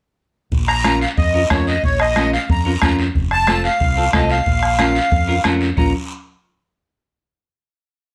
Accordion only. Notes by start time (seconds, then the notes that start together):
0.68 A#5
1.01 F5
1.18 D#5
1.51 C#5
1.67 D#5
1.84 C#5
2.01 D#5
2.34 F5
2.51 A#5
3.32 A5
3.65 F5
4.15 D#5
4.31 F5
5.78 A#5